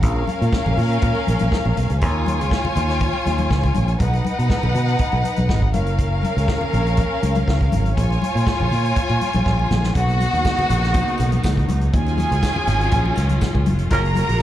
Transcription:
0.03 A#1 C#4 A#4 F5, kick, closed hi-hat, muted conga
0.16 muted conga
0.28 closed hi-hat, high conga
0.42 A#2, closed hi-hat
0.53 kick, snare, muted conga
0.66 A#1, low conga
0.77 A#2, open hi-hat, low conga
0.91 closed hi-hat
1.02 A#2, kick, closed hi-hat, muted conga
1.15 muted conga
1.27 A#1, closed hi-hat, high conga
1.39 A#1, closed hi-hat, high conga
1.52 kick, snare, muted conga
1.65 A#1, muted conga
1.77 B1, closed hi-hat, high conga
1.90 C#2, closed hi-hat
2.01 D#2 F4 C#5 G#5, kick, closed hi-hat
2.26 closed hi-hat, high conga
2.41 C#2, closed hi-hat
2.51 kick, snare, muted conga
2.65 muted conga, low conga
2.76 D#2, closed hi-hat, low conga
2.90 snare, closed hi-hat
3.00 kick, closed hi-hat, muted conga
3.13 muted conga
3.26 D#2, closed hi-hat, high conga
3.38 closed hi-hat, high conga
3.50 C#2, kick, snare, muted conga
3.63 kick, closed hi-hat, muted conga
3.75 A#1, closed hi-hat, high conga
3.88 closed hi-hat
4.00 B1 D#4 B4 F#5, kick, closed hi-hat, muted conga
4.14 closed hi-hat, muted conga
4.25 closed hi-hat, high conga
4.39 B2, closed hi-hat
4.50 kick, snare, muted conga
4.63 B1, muted conga, low conga
4.75 B2, closed hi-hat, low conga
4.88 closed hi-hat
4.99 kick, closed hi-hat
5.12 B1, muted conga
5.24 closed hi-hat, high conga
5.36 B1, closed hi-hat, high conga
5.49 G#1, kick, snare
5.62 kick
5.74 F#1 C#4 A#4 F5, closed hi-hat, high conga
5.86 closed hi-hat
5.98 kick, closed hi-hat
6.23 closed hi-hat, high conga
6.37 C#2, closed hi-hat
6.48 kick, snare
6.61 muted conga, low conga
6.73 A#1, closed hi-hat, low conga
6.86 closed hi-hat
6.97 kick, closed hi-hat
7.23 C#2, closed hi-hat, high conga
7.35 closed hi-hat, high conga
7.48 C#2, kick, snare
7.61 kick, closed hi-hat, muted conga
7.72 G#1, closed hi-hat, high conga
7.86 closed hi-hat
7.97 A#1 F4 C#5 G#5, kick, closed hi-hat
8.10 closed hi-hat, muted conga
8.22 closed hi-hat, high conga
8.35 A#2, closed hi-hat
8.47 kick, snare, muted conga
8.60 A#1, low conga
8.72 A#2, open hi-hat, low conga
8.85 closed hi-hat
8.96 kick, closed hi-hat
9.09 A#2, closed hi-hat, muted conga
9.21 closed hi-hat, high conga
9.33 A#1, closed hi-hat, high conga
9.46 A#1, kick, snare
9.59 muted conga
9.71 A#1, snare, high conga, low conga
9.84 snare
9.95 B1 C#3 A#3 B3 D#4 F#4 F#5, kick, closed hi-hat
10.09 closed hi-hat, muted conga
10.20 closed hi-hat, tambourine, high conga
10.33 D#2, closed hi-hat
10.45 kick, snare, tambourine, muted conga
10.59 closed hi-hat, muted conga, low conga
10.69 A#1, closed hi-hat, tambourine, low conga
10.84 snare, closed hi-hat
10.94 kick, closed hi-hat, tambourine, muted conga
11.08 closed hi-hat
11.18 B1, closed hi-hat, tambourine, high conga
11.32 closed hi-hat, high conga
11.43 C#2, kick, snare, tambourine, muted conga
11.57 kick, closed hi-hat
11.69 C#2, closed hi-hat, tambourine, high conga
11.81 closed hi-hat
11.93 D#2 D#3 F#3 C#4 F4 G#4 G#5, kick, closed hi-hat, muted conga
12.07 closed hi-hat, muted conga
12.18 closed hi-hat, tambourine, high conga
12.31 C#2, closed hi-hat
12.43 kick, snare, tambourine, muted conga
12.56 low conga
12.67 G#1, closed hi-hat, tambourine, low conga
12.81 closed hi-hat
12.91 A#1, kick, closed hi-hat, tambourine, muted conga
13.06 muted conga
13.16 C#2, closed hi-hat, tambourine, high conga
13.29 closed hi-hat, high conga
13.41 kick, snare, tambourine, muted conga
13.55 C#2, kick, muted conga
13.66 F#1, closed hi-hat, high conga
13.79 F1, closed hi-hat
13.90 F#1 G#3 A#3 C#4 F4 F#4 A#4 A#5, kick, closed hi-hat, tambourine, muted conga
14.05 closed hi-hat
14.15 A#3 C#4 F4 A#4, closed hi-hat, tambourine, high conga
14.29 A#1, closed hi-hat

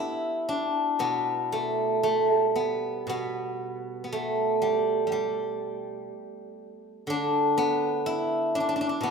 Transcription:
Already playing: B3 D4 E4 G4 A4 B4 D5 E5
0.49 D4
0.99 B2 B3
1.52 A3
2.03 A3
2.34 G3
2.56 B3
3.07 B2 B3
4.04 B3
4.12 A3
4.62 G3
5.07 G3
5.12 G3
7.07 D3 D4
7.58 B3
8.06 E4
8.55 D4
8.60 D4
8.69 D4
8.76 D4
8.81 D4
8.89 D4
9.01 B2 B3

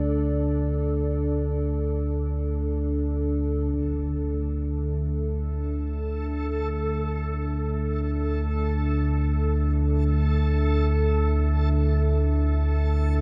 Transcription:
Already playing: D2 D3 D4 A4 D5
3.72 D2 D3 A4, impact
4.50 E5

